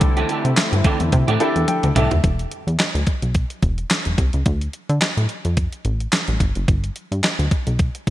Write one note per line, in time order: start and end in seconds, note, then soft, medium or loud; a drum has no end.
0.00 0.24 C2 loud
0.00 2.21 D3 medium
0.00 2.21 A3 medium
0.00 2.21 C4 medium
0.00 0.63 D4 medium
0.00 0.63 E4 medium
0.00 2.21 E4 medium
0.00 0.63 G4 medium
0.00 0.63 A4 loud
0.00 muted clean electric guitar stroke soft
0.00 kick loud
0.00 closed hi-hat medium
0.17 0.28 E3 medium
0.17 0.28 A3 medium
0.17 0.29 D4 medium
0.17 0.29 G4 medium
0.17 closed hi-hat medium
0.29 0.42 E3 medium
0.29 0.43 A3 medium
0.29 0.43 D4 medium
0.29 0.43 G4 medium
0.29 closed hi-hat medium
0.45 0.55 C3 loud
0.45 muted clean electric guitar stroke soft
0.45 closed hi-hat medium
0.57 muted clean electric guitar stroke soft
0.57 snare loud
0.57 clap medium
0.57 closed hi-hat medium
0.72 0.82 G2 medium
0.72 muted clean electric guitar stroke soft
0.72 closed hi-hat medium
0.84 1.01 E3 medium
0.84 1.00 A3 medium
0.84 1.00 D4 medium
0.84 0.99 G4 medium
0.84 kick loud
0.84 closed hi-hat medium
1.00 1.10 E2 medium
1.00 muted clean electric guitar stroke soft
1.00 closed hi-hat medium
1.12 1.25 C3 loud
1.12 muted clean electric guitar stroke soft
1.12 kick loud
1.12 closed hi-hat medium
1.28 1.38 A2 medium
1.28 1.39 E3 medium
1.28 1.39 A3 medium
1.28 1.40 D4 medium
1.28 1.40 G4 loud
1.28 closed hi-hat medium
1.40 1.53 E3 medium
1.40 1.54 A3 medium
1.40 1.89 D4 medium
1.40 1.54 D4 medium
1.40 1.89 E4 medium
1.40 1.89 G4 medium
1.40 1.54 G4 medium
1.40 1.90 A4 medium
1.40 1.66 A5 medium
1.40 closed hi-hat medium
1.56 1.66 E2 medium
1.56 muted clean electric guitar stroke soft
1.56 closed hi-hat medium
1.68 1.94 G5 medium
1.68 closed hi-hat loud
1.68 high tom medium
1.83 1.94 D2 medium
1.83 muted clean electric guitar stroke soft
1.83 closed hi-hat medium
1.83 mid tom medium
1.95 2.09 C2 loud
1.95 2.12 E3 medium
1.95 2.11 A3 medium
1.95 2.11 D4 medium
1.95 2.10 G4 medium
1.95 2.22 E5 medium
1.95 closed hi-hat medium
1.95 mid tom loud
2.11 2.21 D#2 loud
2.11 muted clean electric guitar stroke soft
2.11 closed hi-hat medium
2.11 floor tom medium
2.24 2.47 E1 loud
2.24 kick loud
2.24 closed hi-hat medium
2.39 closed hi-hat soft
2.51 closed hi-hat medium
2.67 2.77 E2 medium
2.67 closed hi-hat medium
2.79 snare loud
2.79 clap medium
2.79 closed hi-hat medium
2.95 3.05 D2 medium
2.95 closed hi-hat medium
3.07 kick medium
3.07 closed hi-hat medium
3.22 3.45 B1 medium
3.22 closed hi-hat medium
3.34 kick loud
3.34 closed hi-hat medium
3.50 closed hi-hat medium
3.62 3.85 E1 medium
3.62 kick medium
3.62 closed hi-hat medium
3.78 closed hi-hat soft
3.90 snare loud
3.90 clap medium
3.90 closed hi-hat medium
4.05 4.16 E1 medium
4.05 closed hi-hat medium
4.18 4.31 C2 medium
4.18 kick medium
4.18 closed hi-hat medium
4.33 4.44 C#2 medium
4.33 closed hi-hat soft
4.46 4.69 D2 loud
4.46 kick loud
4.46 closed hi-hat medium
4.61 closed hi-hat medium
4.73 closed hi-hat medium
4.89 4.99 D3 medium
4.89 closed hi-hat medium
5.01 snare medium
5.01 clap medium
5.01 closed hi-hat medium
5.17 5.27 A2 medium
5.17 closed hi-hat medium
5.29 closed hi-hat medium
5.45 5.68 F2 medium
5.45 closed hi-hat medium
5.57 kick medium
5.57 closed hi-hat medium
5.72 closed hi-hat medium
5.85 6.08 A1 medium
5.85 closed hi-hat medium
6.00 closed hi-hat soft
6.12 snare loud
6.12 clap medium
6.12 closed hi-hat loud
6.28 6.38 A1 medium
6.28 closed hi-hat soft
6.40 6.53 G1 medium
6.40 kick medium
6.40 closed hi-hat medium
6.55 6.66 F#1 medium
6.55 closed hi-hat soft
6.68 6.91 G1 loud
6.68 kick loud
6.68 closed hi-hat medium
6.84 closed hi-hat medium
6.96 closed hi-hat medium
7.11 7.21 G2 medium
7.11 closed hi-hat medium
7.24 snare medium
7.24 clap medium
7.24 closed hi-hat medium
7.39 7.49 D2 medium
7.39 closed hi-hat medium
7.51 kick loud
7.51 closed hi-hat medium
7.67 7.90 B1 medium
7.67 closed hi-hat medium
7.79 kick loud
7.79 closed hi-hat medium
7.95 closed hi-hat medium